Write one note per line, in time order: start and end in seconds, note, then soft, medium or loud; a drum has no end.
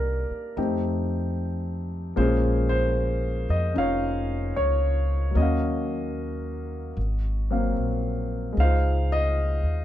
0.00 0.27 C2 medium
0.00 0.54 A#3 soft
0.00 0.56 D4 soft
0.00 0.56 D#4 soft
0.00 0.57 G4 soft
0.00 0.60 A#4 medium
0.00 0.60 D5 medium
0.31 muted upright bass stroke soft
0.57 2.12 F2 medium
0.57 2.16 A3 soft
0.57 2.16 C4 soft
0.57 2.17 D#4 soft
0.57 2.17 G4 soft
2.16 3.45 A#1 medium
2.16 5.35 G#3 soft
2.16 5.33 A#3 soft
2.16 3.73 C#4 soft
2.16 3.76 F4 soft
2.16 3.73 G#4 soft
2.16 2.68 C5 medium
2.69 3.51 C5 medium
3.49 3.74 F2 medium
3.49 3.74 D#5 medium
3.74 4.51 F1 medium
3.74 5.35 C#4 soft
3.74 5.36 D#4 soft
3.74 5.36 F4 soft
3.74 4.53 F5 medium
3.79 4.55 C#5 soft
4.56 5.32 C#2 medium
4.56 5.38 C#5 medium
5.31 6.94 F#3 soft
5.31 6.96 A#3 soft
5.35 6.92 D#2 medium
5.35 6.97 C#4 soft
5.35 7.73 F#4 soft
5.35 7.73 D#5 medium
5.42 6.99 F5 soft
6.97 7.73 G#1 medium
7.50 8.57 F#3 soft
7.50 8.57 A#3 soft
7.50 8.57 C4 soft
7.50 8.58 F5 soft
7.77 8.53 A#1 soft
8.53 9.85 G#3 soft
8.57 9.59 C#2 medium
8.57 9.85 D#4 soft
8.57 9.85 C5 medium
8.57 9.08 F5 medium
8.63 9.85 F4 soft
9.12 9.85 D#5 medium
9.63 9.85 D#2 soft